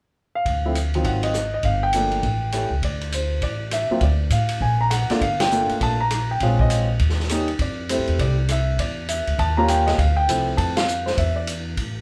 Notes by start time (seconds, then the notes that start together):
0.35 F5
0.45 D2, kick, ride
0.65 F3 A3 C4 E4
0.75 hi-hat pedal, ride
0.94 D#3 F#3 C4 F4, ride
1.04 G#1 F#5, kick, ride
1.23 D#5, ride
1.34 cross-stick, hi-hat pedal
1.54 D#5
1.63 G1 F5, kick, ride
1.83 G5
1.93 F3 A3 A#3 D4, hi-hat pedal, ride
2.12 ride
2.23 A1, kick, ride
2.52 G3 A3 C#4 E4, cross-stick, hi-hat pedal, ride
2.70 C#2
2.82 D2 D5, kick, ride
3.01 ride
3.12 C5, hi-hat pedal, ride
3.42 A1 D5, kick, ride
3.71 E5, cross-stick, hi-hat pedal, ride
3.90 F#3 A#3 C4 F4, muted upright bass stroke
4.01 D2 D5, kick, ride
4.30 A2 F5, hi-hat pedal, ride
4.49 ride
4.60 A#1 G#5, kick
4.81 A#5
4.90 F#5, cross-stick, hi-hat pedal, ride
5.09 A3 A#3 D4 F4 D5, muted upright bass stroke, snare, ride
5.21 G1 F5, kick, ride
5.40 G5, snare, ride
5.51 A3 A#3 D4 F4, hi-hat pedal
5.69 muted upright bass stroke, ride
5.81 A#1 A5, kick, ride
6.00 A#5
6.11 cross-stick, hi-hat pedal, ride
6.31 G5
6.40 A#1 G#3 C4 C#4 F4 F5, kick, ride
6.59 D#5, kick
6.70 hi-hat pedal, ride
6.99 D#2, kick, ride
7.09 snare
7.20 snare
7.29 G3 A#3 C#4 D#4, cross-stick, hi-hat pedal, ride
7.48 ride
7.59 F2 D5, kick, ride
7.89 G3 A3 C4 E4 C5, hi-hat pedal, ride
7.98 G2
8.07 E2, ride
8.19 C2 D5, kick, ride
8.49 E5, cross-stick, hi-hat pedal, ride
8.78 E2 D5, kick, ride
9.09 E5, hi-hat pedal, ride
9.27 D2, ride
9.38 D#2 A5, kick, ride
9.57 G3 A#3 C#4 F4 A#5
9.68 G5, cross-stick, hi-hat pedal, ride
9.87 D#5, snare, ride
9.98 D2 F5, kick, ride
10.16 G5
10.28 C2 F3 A3 C4 E4, hi-hat pedal, ride
10.57 F2 A5, kick, ride
10.77 F5, snare, ride
10.88 hi-hat pedal
11.06 C5, snare
11.17 E2 E5, kick, ride
11.36 D5
11.47 hi-hat pedal, ride
11.77 A1, kick, ride